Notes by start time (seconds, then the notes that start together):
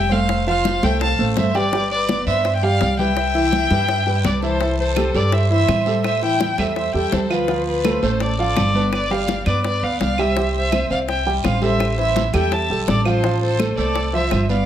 Already playing: F1 G5
0.11 A3 A4 C5 F5, high conga, short guiro
0.29 high bongo, high conga, long guiro
0.47 F3 F4 C5 F5, high bongo, high conga
0.65 high bongo, high conga, short guiro
0.83 C2 A3 A4 C5 E5 G5, high bongo, high conga, short guiro
1.01 F5 A5, high bongo, high conga, long guiro
1.19 A1 A3 A4 C5, high conga
1.37 G1 C5 E5, high bongo, low bongo, high conga, short guiro
1.55 G3 G4 B4 D5 G5, high bongo, short guiro
1.73 G3 G4 G5, high bongo, high conga, long guiro
1.91 B4 D5, high conga
2.09 B3 B4 D5, high bongo, high conga, short guiro
2.26 G2 B3 B4 C5 D5 E5, high conga, short guiro
2.45 high bongo, high conga, long guiro
2.56 E5 G5
2.63 G3 G4 D5 F5 G5, high conga
2.81 C2, high bongo, low bongo, high conga, short guiro
2.99 G3 G4 B4 E5 G5, high conga, short guiro
3.17 high bongo, long guiro
3.35 E3 E4 E5, high bongo, high conga
3.52 high bongo, high conga, short guiro
3.70 G2 G3 G4 B4, high bongo, high conga, short guiro
3.89 high bongo, high conga, long guiro
4.06 G3 G4 B4, high conga
4.24 C2 B4 D5, high bongo, low bongo, high conga, short guiro
4.42 E3 E4 A4 C5 E5, high bongo, short guiro
4.60 E3 E4 E5, high bongo, high conga, long guiro
4.78 A4 C5, high conga
4.96 G3 G4 A4, high bongo, high conga, short guiro, claves
5.14 G2 G3 G4 A4 B4 D5, high conga, short guiro
5.32 C5 E5, high bongo, high conga, long guiro
5.50 E3 E4 C5 E5, high conga
5.68 A2, high bongo, low bongo, high conga, short guiro, claves
5.86 G3 G4 A4, high conga, short guiro
6.04 C5 E5, high bongo, high conga, long guiro, claves
6.22 E3 E4 E5 G5, high bongo, high conga
6.40 high bongo, high conga, short guiro
6.58 E2 G3 G4 A4 C5 E5, high bongo, high conga, short guiro, claves
6.76 C5 E5, high bongo, high conga, long guiro
6.94 E2 G3 G4 A4 E5 G5, high conga
7.12 D2 A4 C5, high bongo, low bongo, high conga, short guiro
7.30 F3 F4 B4 F5, high bongo, short guiro, claves
7.48 F3 F4 F5, high bongo, high conga, long guiro
7.67 F4 B4, high conga
7.84 A3 A4 C5, high bongo, high conga, short guiro, claves
8.02 A1 A3 A4 C5, high conga, short guiro
8.20 A4 D5, high bongo, high conga, long guiro
8.38 F3 F4 A4 D5 F5, high conga
8.56 G1, high bongo, low bongo, high conga, short guiro, claves
8.74 B3 B4 D5, high conga, short guiro
8.92 B4 D5, high bongo, long guiro, claves
9.10 G3 G4 D5 F5 G5, high bongo, high conga
9.28 high bongo, high conga, short guiro
9.46 G2 B3 B4 D5, high bongo, high conga, short guiro, claves
9.64 B4 D5, high bongo, high conga, long guiro
9.82 D2 B3 B4 D5 F5, high conga
10.00 C2 D5 F5, high bongo, low bongo, high conga, short guiro
10.18 G3 G4 C5 E5 G5, high bongo, high conga, short guiro, claves
10.36 G3 G4 G5, high bongo, long guiro
10.54 C5 E5, high conga
10.72 C4 C5 E5, high bongo, high conga, short guiro, claves
10.90 C2 C4 C5 D5 E5 F5, high conga, short guiro
11.08 E5 G5, high bongo, high conga, long guiro
11.26 G3 G4 G5, high conga
11.44 A1 C5 F5, high bongo, low bongo, high conga, short guiro, claves
11.62 G3 G4 A4 C5 E5, high conga, short guiro
11.79 high bongo, high conga, long guiro, claves
11.98 E3 E4 C5 E5, high bongo, high conga
12.16 high bongo, high conga, short guiro
12.34 E2 G3 G4 A4 E5 G5, high bongo, high conga, short guiro, claves
12.51 E5 A5, high bongo, high conga, long guiro
12.70 B1 G3 G4 A4, high conga
12.87 A1 A4 D5, high bongo, low bongo, high conga, short guiro
13.05 F3 F4 A4 C5 F5, high bongo, short guiro, claves
13.24 F3 F4 F5, high bongo, long guiro
13.41 A4 C5, high conga
13.59 A3 A4 C5, high bongo, high conga, short guiro, claves
13.77 C2 A3 A4 C5 D5, high conga, short guiro
13.95 high bongo, high conga, long guiro
14.13 F3 F4 C5 E5, high conga
14.31 G1, high bongo, low bongo, high conga, short guiro, claves
14.49 B3 B4 D5 F5, high conga, short guiro